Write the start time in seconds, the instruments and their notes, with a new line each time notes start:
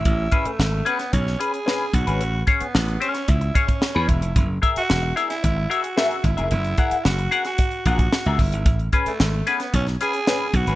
Already playing: tenor saxophone E4
0.05 slap bass A1, kick, closed hi-hat
0.31 clean electric guitar C#4 G#4 B4, kick, closed hi-hat
0.45 tenor saxophone A3, muted slap bass stroke, closed hi-hat
0.59 slap bass G#1, snare
0.72 muted clean electric guitar stroke
0.85 tenor saxophone B3, clean electric guitar C#4 G#4 B4, closed hi-hat
0.99 muted clean electric guitar stroke, snare, closed hi-hat
1.12 slap bass B1, tenor saxophone C#4, muted clean electric guitar stroke, kick, closed hi-hat
1.26 muted clean electric guitar stroke, snare
1.39 clean electric guitar C#4 G#4 B4, tenor saxophone G#4, closed hi-hat
1.53 muted clean electric guitar stroke, closed hi-hat
1.66 clean electric guitar C#4 G#4 B4, snare
1.93 slap bass B1, tenor saxophone F#4, muted clean electric guitar stroke, kick, closed hi-hat
2.07 slap bass G#1, clean electric guitar C#4 G#4 B4, closed hi-hat
2.20 slap bass A1, closed hi-hat
2.47 clean electric guitar C#4 G#4 C#5, kick, closed hi-hat
2.60 tenor saxophone B3, muted slap bass stroke, closed hi-hat
2.75 slap bass A1, snare
2.87 muted clean electric guitar stroke, closed hi-hat
3.00 clean electric guitar C#4 G#4 C#5, tenor saxophone C#4, closed hi-hat
3.15 muted clean electric guitar stroke, snare, closed hi-hat
3.28 slap bass C#2, tenor saxophone E4, muted clean electric guitar stroke, kick, closed hi-hat
3.41 muted clean electric guitar stroke, closed hi-hat
3.55 clean electric guitar C#4 G#4 C#5, tenor saxophone C#4, kick, closed hi-hat
3.68 muted clean electric guitar stroke, kick, closed hi-hat
3.81 muted clean electric guitar stroke, snare
3.95 slap bass E2, clean electric guitar C#4 G#4 B4
4.08 slap bass E1, tenor saxophone E4, muted clean electric guitar stroke, kick, closed hi-hat
4.21 slap bass F1, muted clean electric guitar stroke, closed hi-hat
4.36 slap bass F#1, kick, closed hi-hat
4.62 clean electric guitar G#4 A#4 E5, kick, closed hi-hat
4.76 tenor saxophone F#4, muted slap bass stroke, closed hi-hat
4.90 slap bass E1, snare
5.03 muted clean electric guitar stroke
5.16 tenor saxophone E4, clean electric guitar G#4 A#4 E5, closed hi-hat
5.30 tenor saxophone E4, muted clean electric guitar stroke, snare, closed hi-hat
5.43 slap bass G#1, muted clean electric guitar stroke, kick, closed hi-hat
5.57 muted clean electric guitar stroke
5.70 tenor saxophone F#4, clean electric guitar G#4 A#4 E5, closed hi-hat
5.83 muted clean electric guitar stroke, closed hi-hat
5.97 clean electric guitar G#4 A#4 E5, snare
6.11 closed hi-hat
6.24 slap bass G#1, tenor saxophone E4, muted clean electric guitar stroke, kick, closed hi-hat
6.37 slap bass F1, clean electric guitar G#4 A#4 E5, closed hi-hat
6.51 slap bass F#1, tenor saxophone E4, closed hi-hat
6.65 closed hi-hat
6.78 clean electric guitar G#4 A#4 F#5, kick, closed hi-hat
6.91 muted slap bass stroke, closed hi-hat
7.05 slap bass F#1, tenor saxophone F#4, snare
7.18 muted clean electric guitar stroke, closed hi-hat
7.31 clean electric guitar G#4 A#4 F#5, closed hi-hat
7.45 tenor saxophone F#4, muted clean electric guitar stroke, snare, closed hi-hat
7.58 muted clean electric guitar stroke, kick, closed hi-hat
7.71 closed hi-hat
7.86 slap bass A#1, tenor saxophone F#4, clean electric guitar G#4 A#4 F#5, kick, closed hi-hat
7.99 muted clean electric guitar stroke, kick, closed hi-hat
8.13 muted clean electric guitar stroke, snare
8.26 slap bass C#2, clean electric guitar G#4 A#4 E5, closed hi-hat
8.39 slap bass G1, tenor saxophone E4, muted clean electric guitar stroke, kick, open hi-hat
8.52 slap bass G#1, muted clean electric guitar stroke, closed hi-hat
8.66 slap bass A1, kick, closed hi-hat
8.79 closed hi-hat
8.93 clean electric guitar C#4 G#4 B4, kick, closed hi-hat
9.06 tenor saxophone A3, muted slap bass stroke, closed hi-hat
9.20 slap bass G#1, snare
9.33 muted clean electric guitar stroke
9.47 tenor saxophone B3, clean electric guitar C#4 G#4 B4, closed hi-hat
9.60 muted clean electric guitar stroke, snare, closed hi-hat
9.74 slap bass B1, tenor saxophone C#4, muted clean electric guitar stroke, kick, closed hi-hat
9.87 muted clean electric guitar stroke, snare, closed hi-hat
10.01 clean electric guitar C#4 G#4 B4, tenor saxophone G#4, closed hi-hat
10.13 muted clean electric guitar stroke, closed hi-hat
10.27 clean electric guitar C#4 G#4 B4, snare
10.54 slap bass B1, tenor saxophone F#4, muted clean electric guitar stroke, kick, closed hi-hat
10.67 slap bass G#1, clean electric guitar C#4 G#4 B4, closed hi-hat